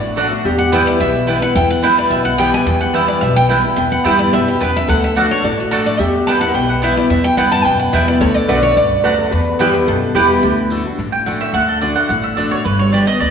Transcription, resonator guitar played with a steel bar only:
0, 0, Header, 1, 2, 480
1, 0, Start_track
1, 0, Tempo, 277393
1, 773, Time_signature, 4, 2, 24, 8
1, 23023, End_track
2, 0, Start_track
2, 0, Title_t, "Resonator guitar played with a steel bar"
2, 0, Program_c, 0, 25
2, 0, Note_on_c, 0, 62, 82
2, 285, Note_off_c, 0, 62, 0
2, 306, Note_on_c, 0, 62, 87
2, 746, Note_off_c, 0, 62, 0
2, 784, Note_on_c, 0, 67, 97
2, 2400, Note_off_c, 0, 67, 0
2, 2702, Note_on_c, 0, 64, 80
2, 4134, Note_on_c, 0, 67, 85
2, 4181, Note_off_c, 0, 64, 0
2, 6527, Note_on_c, 0, 71, 98
2, 6606, Note_off_c, 0, 67, 0
2, 7012, Note_on_c, 0, 67, 88
2, 7025, Note_off_c, 0, 71, 0
2, 7493, Note_on_c, 0, 71, 104
2, 7507, Note_off_c, 0, 67, 0
2, 8444, Note_off_c, 0, 71, 0
2, 8451, Note_on_c, 0, 69, 99
2, 9398, Note_off_c, 0, 69, 0
2, 9419, Note_on_c, 0, 69, 92
2, 10095, Note_off_c, 0, 69, 0
2, 10370, Note_on_c, 0, 67, 96
2, 11215, Note_on_c, 0, 70, 72
2, 11241, Note_off_c, 0, 67, 0
2, 11314, Note_off_c, 0, 70, 0
2, 11321, Note_on_c, 0, 71, 99
2, 14210, Note_on_c, 0, 69, 103
2, 14292, Note_off_c, 0, 71, 0
2, 14680, Note_on_c, 0, 74, 109
2, 14705, Note_off_c, 0, 69, 0
2, 15640, Note_on_c, 0, 71, 116
2, 15674, Note_off_c, 0, 74, 0
2, 15877, Note_off_c, 0, 71, 0
2, 15891, Note_on_c, 0, 69, 89
2, 16109, Note_off_c, 0, 69, 0
2, 16113, Note_on_c, 0, 71, 104
2, 16616, Note_off_c, 0, 71, 0
2, 16618, Note_on_c, 0, 67, 96
2, 16850, Note_on_c, 0, 71, 97
2, 16872, Note_off_c, 0, 67, 0
2, 17085, Note_on_c, 0, 69, 108
2, 17092, Note_off_c, 0, 71, 0
2, 17555, Note_off_c, 0, 69, 0
2, 17562, Note_on_c, 0, 67, 105
2, 17792, Note_off_c, 0, 67, 0
2, 17813, Note_on_c, 0, 67, 76
2, 18030, Note_off_c, 0, 67, 0
2, 23023, End_track
0, 0, End_of_file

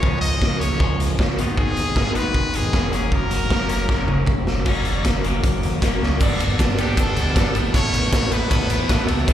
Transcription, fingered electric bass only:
0, 0, Header, 1, 2, 480
1, 0, Start_track
1, 0, Tempo, 385356
1, 37, Time_signature, 4, 2, 24, 8
1, 11621, End_track
2, 0, Start_track
2, 0, Title_t, "Fingered electric bass"
2, 0, Program_c, 0, 33
2, 34, Note_on_c, 0, 37, 93
2, 239, Note_off_c, 0, 37, 0
2, 269, Note_on_c, 0, 37, 76
2, 477, Note_off_c, 0, 37, 0
2, 518, Note_on_c, 0, 37, 87
2, 722, Note_off_c, 0, 37, 0
2, 752, Note_on_c, 0, 37, 81
2, 959, Note_off_c, 0, 37, 0
2, 995, Note_on_c, 0, 37, 91
2, 1201, Note_off_c, 0, 37, 0
2, 1231, Note_on_c, 0, 37, 92
2, 1439, Note_off_c, 0, 37, 0
2, 1478, Note_on_c, 0, 37, 90
2, 1684, Note_off_c, 0, 37, 0
2, 1718, Note_on_c, 0, 32, 86
2, 1923, Note_off_c, 0, 32, 0
2, 1959, Note_on_c, 0, 32, 90
2, 2165, Note_off_c, 0, 32, 0
2, 2204, Note_on_c, 0, 32, 80
2, 2407, Note_off_c, 0, 32, 0
2, 2439, Note_on_c, 0, 32, 89
2, 2645, Note_off_c, 0, 32, 0
2, 2679, Note_on_c, 0, 32, 86
2, 2886, Note_off_c, 0, 32, 0
2, 2917, Note_on_c, 0, 32, 88
2, 3124, Note_off_c, 0, 32, 0
2, 3174, Note_on_c, 0, 32, 93
2, 3374, Note_off_c, 0, 32, 0
2, 3406, Note_on_c, 0, 29, 87
2, 3610, Note_off_c, 0, 29, 0
2, 3655, Note_on_c, 0, 30, 89
2, 3855, Note_off_c, 0, 30, 0
2, 3884, Note_on_c, 0, 30, 96
2, 4089, Note_off_c, 0, 30, 0
2, 4132, Note_on_c, 0, 30, 79
2, 4334, Note_off_c, 0, 30, 0
2, 4365, Note_on_c, 0, 30, 88
2, 4570, Note_off_c, 0, 30, 0
2, 4605, Note_on_c, 0, 30, 84
2, 4810, Note_off_c, 0, 30, 0
2, 4843, Note_on_c, 0, 30, 91
2, 5049, Note_off_c, 0, 30, 0
2, 5089, Note_on_c, 0, 30, 96
2, 5292, Note_off_c, 0, 30, 0
2, 5323, Note_on_c, 0, 30, 96
2, 5529, Note_off_c, 0, 30, 0
2, 5563, Note_on_c, 0, 30, 89
2, 5769, Note_off_c, 0, 30, 0
2, 5804, Note_on_c, 0, 30, 94
2, 6002, Note_off_c, 0, 30, 0
2, 6044, Note_on_c, 0, 30, 78
2, 6242, Note_off_c, 0, 30, 0
2, 6288, Note_on_c, 0, 30, 83
2, 6484, Note_off_c, 0, 30, 0
2, 6531, Note_on_c, 0, 30, 84
2, 6726, Note_off_c, 0, 30, 0
2, 6767, Note_on_c, 0, 30, 85
2, 6964, Note_off_c, 0, 30, 0
2, 7012, Note_on_c, 0, 39, 93
2, 7207, Note_off_c, 0, 39, 0
2, 7250, Note_on_c, 0, 30, 94
2, 7445, Note_off_c, 0, 30, 0
2, 7491, Note_on_c, 0, 37, 84
2, 7686, Note_off_c, 0, 37, 0
2, 7729, Note_on_c, 0, 31, 101
2, 7958, Note_off_c, 0, 31, 0
2, 7977, Note_on_c, 0, 31, 90
2, 8201, Note_off_c, 0, 31, 0
2, 8212, Note_on_c, 0, 31, 94
2, 8667, Note_off_c, 0, 31, 0
2, 8687, Note_on_c, 0, 31, 98
2, 8915, Note_off_c, 0, 31, 0
2, 8928, Note_on_c, 0, 38, 102
2, 9155, Note_off_c, 0, 38, 0
2, 9165, Note_on_c, 0, 31, 100
2, 9393, Note_off_c, 0, 31, 0
2, 9407, Note_on_c, 0, 33, 94
2, 9634, Note_off_c, 0, 33, 0
2, 9642, Note_on_c, 0, 33, 107
2, 9871, Note_off_c, 0, 33, 0
2, 9881, Note_on_c, 0, 33, 81
2, 10110, Note_off_c, 0, 33, 0
2, 10120, Note_on_c, 0, 33, 97
2, 10349, Note_off_c, 0, 33, 0
2, 10360, Note_on_c, 0, 33, 86
2, 10589, Note_off_c, 0, 33, 0
2, 10602, Note_on_c, 0, 33, 96
2, 10829, Note_off_c, 0, 33, 0
2, 10843, Note_on_c, 0, 33, 103
2, 11070, Note_off_c, 0, 33, 0
2, 11081, Note_on_c, 0, 33, 96
2, 11308, Note_off_c, 0, 33, 0
2, 11326, Note_on_c, 0, 37, 90
2, 11550, Note_off_c, 0, 37, 0
2, 11560, Note_on_c, 0, 38, 96
2, 11621, Note_off_c, 0, 38, 0
2, 11621, End_track
0, 0, End_of_file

